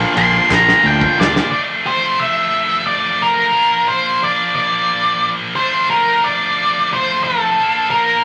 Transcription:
Already playing: overdriven electric guitar A#2 D3 A#3 D4 F4, distorted electric guitar F3 A#3 D4
0.14 picked electric bass A#1, overdriven electric guitar A#2 D3 A#3 D4 F4, distorted electric guitar F3 A#3 D4, lead electric guitar C6, ride
0.19 clap
0.36 clap
0.49 picked electric bass A#1, overdriven electric guitar A#2 D3 A#3 D4 F4, distorted electric guitar F3 A#3 D4, kick, snare, clap
0.54 lead electric guitar A#5
0.68 snare
0.83 picked electric bass D2, overdriven electric guitar A#2 D3 A#3 D4 F4, distorted electric guitar F3 A#3 D4, lead electric guitar G5, clap
1.01 kick
1.17 picked electric bass C#2, overdriven electric guitar A#2 D3 A#3 D4 F4, distorted electric guitar F3 A#3 D4, lead electric guitar D5, snare
1.36 snare
1.51 distorted electric guitar F3 A3 D4, lead electric guitar D5
1.87 lead electric guitar C5
2.20 lead electric guitar E5
2.87 lead electric guitar D5
3.22 lead electric guitar A#4
3.53 distorted electric guitar F3 A#3 D4
3.88 lead electric guitar C5
4.23 lead electric guitar D5
4.56 lead electric guitar D5
5.56 distorted electric guitar F3 A3, lead electric guitar C5
5.60 distorted electric guitar D4
5.90 lead electric guitar A#4
6.24 lead electric guitar D5
6.93 lead electric guitar C5
7.24 lead electric guitar A4
7.59 distorted electric guitar F3 A#3
7.64 distorted electric guitar D4
7.91 lead electric guitar A#4

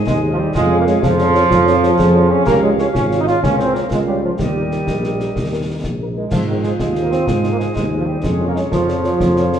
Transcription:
Already playing: euphonium D#4, woodwind section C5 D#5
0.05 tuba D#2, trombone section G#3, cornet G#4, concert bass drum, snare
0.23 french horn section D#4 G#4 C5
0.30 trombone section F3, cornet F4
0.38 trombone section G3, french horn section D#4 G#4 C5, cornet G4
0.54 tuba F2, trombone section G#3, euphonium F4, cornet G#4, woodwind section C#5 F5, concert bass drum, snare
0.72 french horn section F4 G#4 C#5
0.78 trombone section A#3, cornet A#4
0.85 trombone section G#3, french horn section F4 G#4 C#5, cornet G#4, snare
1.02 tuba F2, trombone section F3, cornet F4, euphonium G#4, concert bass drum, snare
1.19 french horn section F4 G#4 C#5, snare
1.34 french horn section F4 G#4 C#5, snare
1.49 tuba F2, euphonium F4, concert bass drum, snare
1.66 french horn section F4 G#4 C#5, snare
1.83 french horn section F4 G#4 C#5, snare
1.98 tuba F2, euphonium G#4, concert bass drum, snare
2.14 french horn section F4 G#4 C#5
2.30 trombone section C#4, french horn section F4 G#4 C#5, cornet C#5
2.46 tuba C#2, trombone section A#3, euphonium G4, cornet A#4, woodwind section C#5 F5, concert bass drum, snare, crash
2.63 trombone section G#3, french horn section F4 G#4 C#5, cornet G#4
2.78 trombone section C#4, french horn section F4 G#4 C#5, cornet C#5, snare
2.94 tuba G#1, trombone section C#4, euphonium F4, cornet C#5, concert bass drum, snare
3.11 french horn section F4 G#4 C#5, snare
3.18 trombone section D#4, cornet D#5
3.27 trombone section F4, french horn section F4 G#4 C#5, cornet F5, snare
3.43 tuba C#2, euphonium C#4, trombone section C#4, woodwind section A#4, cornet C#5, concert bass drum, snare
3.58 trombone section C4, french horn section F4 A#4 C#5, cornet C5, snare
3.74 trombone section A#3, french horn section F4 A#4 C#5, cornet A#4, snare
3.90 tuba C#2, trombone section G#3, euphonium F4, cornet G#4, concert bass drum, snare
4.07 trombone section G3, french horn section F4 A#4 C#5, cornet G4
4.23 trombone section F3, cornet F4, french horn section F4 A#4 C#5
4.38 tuba D#2, trombone section G3, euphonium G4, cornet G4, woodwind section A#4 D#5, concert bass drum, snare
4.55 french horn section D#4 A#4
4.71 french horn section D#4 A#4, snare
4.87 tuba A#1, concert bass drum, snare
5.04 french horn section D#4 A#4, snare
5.20 french horn section D#4 A#4, snare
5.36 tuba D#2, concert bass drum, snare
5.53 french horn section D#4 A#4
5.69 french horn section D#4 A#4
5.84 tuba A#1, concert bass drum, snare
6.01 french horn section D#4 A#4
6.15 trombone section G#3, french horn section D#4 A#4, cornet G#4
6.31 tuba G#2, trombone section F3, cornet F4, euphonium F4, woodwind section C5 D#5, concert bass drum, snare, crash
6.47 trombone section D#3, cornet D#4, french horn section D#4 G#4 C5
6.63 trombone section G#3, french horn section D#4 G#4 C5, cornet G#4, snare
6.79 tuba D#2, trombone section G#3, cornet G#4, concert bass drum, snare
6.95 french horn section D#4 G#4 C5, snare
7.02 trombone section A#3, cornet A#4
7.10 trombone section C4, french horn section D#4 G#4 C5, cornet C5, snare
7.26 tuba G#2, trombone section G#3, cornet G#4, concert bass drum, snare
7.44 french horn section D#4 G#4 C5, snare
7.51 trombone section A#3, cornet A#4
7.59 trombone section G#3, french horn section D#4 G#4 C5, cornet G#4, snare
7.75 tuba D#2, trombone section G#3, euphonium D#4, cornet G#4, concert bass drum, snare
7.92 french horn section D#4 G#4 C5
7.97 trombone section F3, cornet F4
8.06 trombone section G3, french horn section D#4 G#4 C5, cornet G4
8.22 tuba F2, trombone section G#3, euphonium C#4, woodwind section G#4 C#5, cornet G#4, concert bass drum, snare
8.40 french horn section F4 G#4 C#5
8.47 trombone section A#3, cornet A#4
8.54 trombone section G#3, french horn section F4 G#4 C#5, cornet G#4, snare
8.71 tuba F2, trombone section F3, cornet F4, euphonium F4, concert bass drum, snare
8.88 french horn section F4 G#4 C#5, snare
9.04 french horn section F4 G#4 C#5, snare
9.20 tuba F2, concert bass drum, snare
9.36 french horn section F4 G#4 C#5, snare
9.52 french horn section F4 G#4 C#5, snare

